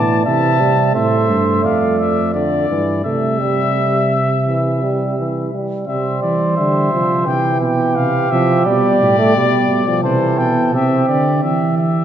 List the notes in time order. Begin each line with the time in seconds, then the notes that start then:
Already playing: A2 E3 D5 A5
0.25 C3 E3 E5 A5
0.60 G3
0.94 A2 A3 C5 E5
1.29 G2
1.63 F2 D5 F5
1.99 E5
2.33 D3 D5
2.69 G2 E3
3.04 C3 A3 E5
3.40 G3
4.47 E3
4.83 G3
5.18 E3
5.54 G3
5.87 C3 G3 C5 E5
6.22 E3 D5
6.57 D3 G3 E5
6.93 C3 F3
7.26 C3 E3 G4 G5
7.61 B2 G5
7.96 C3 F5
8.31 C3 F3 E5
8.65 B2 G3 D5
9.01 A2
9.18 A3
9.36 B2 G3
9.70 B2
9.88 F3
10.02 C3 E3 A4 C5
10.38 B2 G5
10.73 C3 C4 G4 E5
11.09 D3 D5
11.43 E3 G4 E5
11.78 E5